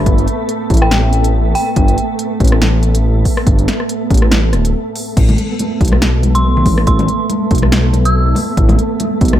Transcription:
Already playing: ambient pad A3, synth texture B3 A4
0.06 detuned saw bass G1, kick, closed hi-hat
0.18 closed hi-hat
0.28 closed hi-hat
0.49 closed hi-hat
0.70 detuned saw bass A1, kick, closed hi-hat
0.74 closed hi-hat
0.77 closed hi-hat
0.82 synth bell G5, cross-stick
0.91 snare, closed hi-hat
1.13 closed hi-hat
1.24 closed hi-hat
1.55 synth bell G5, open hi-hat
1.76 detuned saw bass G1, kick, closed hi-hat
1.88 closed hi-hat
1.98 closed hi-hat
2.19 closed hi-hat
2.40 detuned saw bass A1, kick, closed hi-hat
2.44 closed hi-hat
2.47 closed hi-hat
2.52 cross-stick
2.62 snare, closed hi-hat
2.83 closed hi-hat
2.95 closed hi-hat
3.25 kick, open hi-hat
3.37 cross-stick
3.47 detuned saw bass G1, kick, closed hi-hat
3.59 closed hi-hat
3.68 snare, closed hi-hat
3.80 cross-stick
3.89 closed hi-hat
4.11 detuned saw bass A1, kick, closed hi-hat
4.14 closed hi-hat
4.17 closed hi-hat
4.22 cross-stick
4.32 snare, closed hi-hat
4.53 detuned saw bass D1, cross-stick, closed hi-hat
4.65 closed hi-hat
4.96 open hi-hat
5.17 detuned saw bass A1, ambient pad A3, synth texture B3 A4, kick, closed hi-hat, crash
5.29 closed hi-hat, high conga, low conga
5.38 closed hi-hat
5.59 closed hi-hat, high conga
5.81 detuned saw bass B1, kick, closed hi-hat
5.85 closed hi-hat
5.88 closed hi-hat
5.92 cross-stick, high conga
6.02 snare, closed hi-hat
6.23 closed hi-hat, high conga
6.35 synth bell C6, closed hi-hat
6.57 low conga
6.66 detuned saw bass A1, kick, open hi-hat, high conga
6.78 cross-stick
6.87 detuned saw bass A1, synth bell C6, kick, closed hi-hat
6.99 closed hi-hat, high conga, low conga
7.08 closed hi-hat
7.30 closed hi-hat, high conga
7.51 detuned saw bass B1, kick, closed hi-hat
7.55 closed hi-hat
7.58 closed hi-hat
7.62 cross-stick, high conga
7.72 snare, closed hi-hat
7.93 closed hi-hat, high conga
8.05 synth bell E6, closed hi-hat
8.35 open hi-hat, high conga
8.57 detuned saw bass A1, kick, closed hi-hat
8.69 closed hi-hat, high conga, low conga
8.79 closed hi-hat
9.00 closed hi-hat, high conga
9.21 detuned saw bass B1, kick, closed hi-hat
9.25 closed hi-hat
9.28 closed hi-hat
9.33 cross-stick, high conga

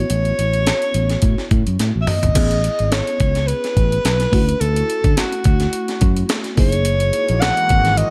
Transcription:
Already playing: fm electric piano B3 C#4 E4 F#4, alto saxophone C#5
0.10 fingered electric bass A1, closed hi-hat
0.25 closed hi-hat
0.39 fingered electric bass A1, closed hi-hat
0.53 closed hi-hat
0.67 snare, closed hi-hat
0.82 closed hi-hat
0.94 fingered electric bass A1, closed hi-hat
1.09 snare, closed hi-hat
1.22 fingered electric bass A2, kick, closed hi-hat
1.38 snare
1.51 fingered electric bass A2, kick, closed hi-hat
1.67 fingered electric bass F#2, closed hi-hat
1.79 fingered electric bass A2, snare, closed hi-hat
1.96 fingered electric bass A1
2.02 alto saxophone E5
2.07 alto saxophone D#5, mid tom, open hi-hat
2.23 fingered electric bass G#1, closed hi-hat, floor tom
2.34 fingered electric bass A1, fm electric piano B3 C#4 E4 G#4, kick, closed hi-hat, crash
2.51 closed hi-hat
2.64 closed hi-hat
2.79 fingered electric bass G#1, closed hi-hat
2.92 alto saxophone C#5, snare, closed hi-hat
3.07 closed hi-hat
3.20 fingered electric bass C#2, kick, closed hi-hat
3.35 snare, closed hi-hat
3.47 alto saxophone B4, closed hi-hat
3.64 snare, closed hi-hat
3.76 fingered electric bass A1, kick, closed hi-hat
3.92 closed hi-hat
4.05 fingered electric bass B1, snare, closed hi-hat
4.20 snare, closed hi-hat
4.31 fingered electric bass D2, fm electric piano A3 C#4 E4 F#4, kick, open hi-hat
4.49 closed hi-hat
4.61 fingered electric bass D2, alto saxophone A4, closed hi-hat
4.76 closed hi-hat
4.90 closed hi-hat
5.04 fingered electric bass D3, kick, closed hi-hat
5.17 alto saxophone F#4, snare, closed hi-hat
5.32 closed hi-hat
5.44 fingered electric bass D2, kick, closed hi-hat
5.60 snare, closed hi-hat
5.73 closed hi-hat
5.88 snare, closed hi-hat
6.01 fingered electric bass F#2, kick, closed hi-hat
6.17 closed hi-hat
6.29 snare, closed hi-hat
6.44 snare, closed hi-hat
6.56 fingered electric bass F#1, fm electric piano A#3 D#4 E4 G#4, alto saxophone C#5, kick, open hi-hat
6.72 closed hi-hat
6.85 analog synth pad E3 G#3 A#3 F#4, closed hi-hat
7.00 closed hi-hat
7.13 closed hi-hat
7.28 fingered electric bass A#1, closed hi-hat
7.41 alto saxophone F#5, snare, closed hi-hat
7.57 closed hi-hat
7.69 fingered electric bass G#1, kick, closed hi-hat
7.85 snare, closed hi-hat
7.97 alto saxophone D#5, closed hi-hat

